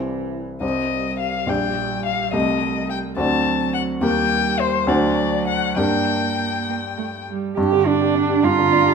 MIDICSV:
0, 0, Header, 1, 4, 480
1, 0, Start_track
1, 0, Key_signature, -2, "minor"
1, 0, Tempo, 579151
1, 518, Time_signature, 6, 3, 24, 8
1, 1469, Tempo, 564972
1, 3869, Tempo, 595238
1, 6269, Tempo, 572519
1, 7416, End_track
2, 0, Start_track
2, 0, Title_t, "Violin"
2, 0, Program_c, 0, 40
2, 517, Note_on_c, 0, 75, 60
2, 961, Note_off_c, 0, 75, 0
2, 991, Note_on_c, 0, 77, 59
2, 1234, Note_on_c, 0, 79, 61
2, 1246, Note_off_c, 0, 77, 0
2, 1704, Note_off_c, 0, 79, 0
2, 1709, Note_on_c, 0, 77, 62
2, 1946, Note_off_c, 0, 77, 0
2, 1951, Note_on_c, 0, 75, 61
2, 2421, Note_off_c, 0, 75, 0
2, 2429, Note_on_c, 0, 79, 66
2, 2497, Note_off_c, 0, 79, 0
2, 2666, Note_on_c, 0, 81, 72
2, 3135, Note_off_c, 0, 81, 0
2, 3141, Note_on_c, 0, 78, 71
2, 3209, Note_off_c, 0, 78, 0
2, 3389, Note_on_c, 0, 79, 86
2, 3867, Note_on_c, 0, 72, 79
2, 3879, Note_off_c, 0, 79, 0
2, 4102, Note_on_c, 0, 74, 71
2, 4114, Note_off_c, 0, 72, 0
2, 4572, Note_off_c, 0, 74, 0
2, 4577, Note_on_c, 0, 78, 71
2, 4817, Note_off_c, 0, 78, 0
2, 4824, Note_on_c, 0, 79, 76
2, 6006, Note_off_c, 0, 79, 0
2, 7001, Note_on_c, 0, 82, 61
2, 7416, Note_off_c, 0, 82, 0
2, 7416, End_track
3, 0, Start_track
3, 0, Title_t, "Grand piano"
3, 0, Program_c, 1, 0
3, 0, Control_c, 1, 64, 127
3, 0, Note_on_c, 1, 36, 37
3, 0, Note_on_c, 1, 55, 29
3, 0, Note_on_c, 1, 64, 31
3, 0, Note_on_c, 1, 72, 29
3, 487, Note_off_c, 1, 36, 0
3, 488, Note_off_c, 1, 55, 0
3, 490, Note_off_c, 1, 64, 0
3, 492, Note_off_c, 1, 72, 0
3, 500, Note_on_c, 1, 36, 43
3, 502, Note_on_c, 1, 55, 33
3, 507, Note_on_c, 1, 67, 33
3, 513, Note_on_c, 1, 72, 33
3, 534, Control_c, 1, 64, 0
3, 652, Control_c, 1, 64, 127
3, 1202, Note_off_c, 1, 36, 0
3, 1203, Note_off_c, 1, 55, 0
3, 1205, Note_off_c, 1, 67, 0
3, 1208, Note_off_c, 1, 72, 0
3, 1215, Note_on_c, 1, 34, 47
3, 1219, Note_on_c, 1, 55, 38
3, 1223, Note_on_c, 1, 67, 40
3, 1228, Note_on_c, 1, 74, 36
3, 1249, Control_c, 1, 64, 0
3, 1398, Control_c, 1, 64, 127
3, 1921, Note_off_c, 1, 34, 0
3, 1923, Note_off_c, 1, 55, 0
3, 1925, Note_off_c, 1, 67, 0
3, 1928, Note_off_c, 1, 74, 0
3, 1934, Note_on_c, 1, 36, 47
3, 1938, Note_on_c, 1, 57, 34
3, 1944, Note_on_c, 1, 67, 37
3, 1947, Note_on_c, 1, 75, 38
3, 1969, Control_c, 1, 64, 0
3, 2120, Control_c, 1, 64, 127
3, 2640, Note_off_c, 1, 36, 0
3, 2641, Note_off_c, 1, 57, 0
3, 2644, Note_off_c, 1, 67, 0
3, 2646, Note_off_c, 1, 75, 0
3, 2653, Note_on_c, 1, 38, 53
3, 2657, Note_on_c, 1, 60, 44
3, 2662, Note_on_c, 1, 66, 42
3, 2666, Note_on_c, 1, 74, 44
3, 2688, Control_c, 1, 64, 0
3, 2846, Control_c, 1, 64, 127
3, 3355, Note_off_c, 1, 38, 0
3, 3357, Note_off_c, 1, 60, 0
3, 3359, Note_off_c, 1, 66, 0
3, 3362, Note_off_c, 1, 74, 0
3, 3368, Note_on_c, 1, 39, 55
3, 3372, Note_on_c, 1, 58, 46
3, 3376, Note_on_c, 1, 67, 50
3, 3379, Note_on_c, 1, 70, 45
3, 3400, Control_c, 1, 64, 0
3, 3539, Control_c, 1, 64, 127
3, 4072, Note_off_c, 1, 39, 0
3, 4073, Note_off_c, 1, 58, 0
3, 4075, Note_off_c, 1, 67, 0
3, 4077, Note_off_c, 1, 70, 0
3, 4087, Note_on_c, 1, 38, 64
3, 4090, Note_on_c, 1, 62, 51
3, 4096, Note_on_c, 1, 66, 48
3, 4099, Note_on_c, 1, 72, 51
3, 4116, Control_c, 1, 64, 0
3, 4241, Control_c, 1, 64, 127
3, 4795, Note_off_c, 1, 38, 0
3, 4796, Note_off_c, 1, 62, 0
3, 4799, Note_off_c, 1, 66, 0
3, 4801, Note_off_c, 1, 72, 0
3, 4808, Note_on_c, 1, 43, 50
3, 4812, Note_on_c, 1, 62, 42
3, 4816, Note_on_c, 1, 67, 39
3, 4820, Note_on_c, 1, 70, 41
3, 4838, Control_c, 1, 64, 0
3, 5003, Control_c, 1, 64, 127
3, 6228, Note_off_c, 1, 43, 0
3, 6231, Note_off_c, 1, 62, 0
3, 6232, Note_off_c, 1, 67, 0
3, 6234, Note_off_c, 1, 70, 0
3, 6269, Note_on_c, 1, 43, 63
3, 6284, Control_c, 1, 64, 0
3, 6393, Note_on_c, 1, 50, 44
3, 6434, Control_c, 1, 64, 127
3, 6514, Note_on_c, 1, 62, 43
3, 6584, Note_off_c, 1, 50, 0
3, 6636, Note_on_c, 1, 67, 44
3, 6705, Note_off_c, 1, 62, 0
3, 6753, Note_on_c, 1, 62, 45
3, 6827, Note_off_c, 1, 67, 0
3, 6871, Note_on_c, 1, 67, 49
3, 6945, Note_off_c, 1, 62, 0
3, 6977, Note_off_c, 1, 43, 0
3, 6989, Note_on_c, 1, 43, 53
3, 7064, Note_off_c, 1, 67, 0
3, 7117, Note_on_c, 1, 50, 41
3, 7234, Note_on_c, 1, 62, 46
3, 7305, Note_off_c, 1, 50, 0
3, 7351, Note_on_c, 1, 67, 40
3, 7416, Note_off_c, 1, 43, 0
3, 7416, Note_off_c, 1, 62, 0
3, 7416, Note_off_c, 1, 67, 0
3, 7416, End_track
4, 0, Start_track
4, 0, Title_t, "Cello"
4, 0, Program_c, 2, 42
4, 0, Note_on_c, 2, 52, 34
4, 352, Note_off_c, 2, 52, 0
4, 519, Note_on_c, 2, 55, 41
4, 2672, Note_on_c, 2, 54, 48
4, 2685, Note_off_c, 2, 55, 0
4, 3382, Note_off_c, 2, 54, 0
4, 3387, Note_on_c, 2, 55, 55
4, 4101, Note_on_c, 2, 54, 59
4, 4113, Note_off_c, 2, 55, 0
4, 4817, Note_off_c, 2, 54, 0
4, 4821, Note_on_c, 2, 58, 46
4, 5486, Note_off_c, 2, 58, 0
4, 5552, Note_on_c, 2, 58, 48
4, 5617, Note_off_c, 2, 58, 0
4, 5787, Note_on_c, 2, 57, 52
4, 5851, Note_off_c, 2, 57, 0
4, 6033, Note_on_c, 2, 55, 52
4, 6265, Note_off_c, 2, 55, 0
4, 6272, Note_on_c, 2, 67, 76
4, 6510, Note_on_c, 2, 62, 77
4, 6522, Note_off_c, 2, 67, 0
4, 6997, Note_on_c, 2, 65, 85
4, 7010, Note_off_c, 2, 62, 0
4, 7416, Note_off_c, 2, 65, 0
4, 7416, End_track
0, 0, End_of_file